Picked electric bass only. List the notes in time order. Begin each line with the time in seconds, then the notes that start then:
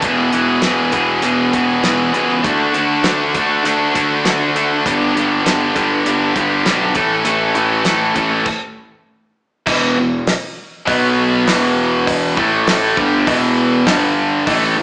0.03 E1
0.32 E1
0.62 E1
0.93 E1
1.23 E1
1.54 E1
1.83 E1
2.14 C#2
2.45 D2
2.73 D2
3.04 D2
3.35 D2
3.65 D2
3.95 D2
4.25 D2
4.86 G1
5.16 G1
5.46 G1
5.76 G1
6.06 G1
6.36 G1
6.66 B1
6.95 A1
7.25 A1
7.56 A1
7.85 A1
8.16 A1
9.67 E1
9.97 E1
10.88 B1
11.48 E1
12.38 A1
12.98 G1
13.27 E1
13.88 G1
14.47 A1
14.78 A1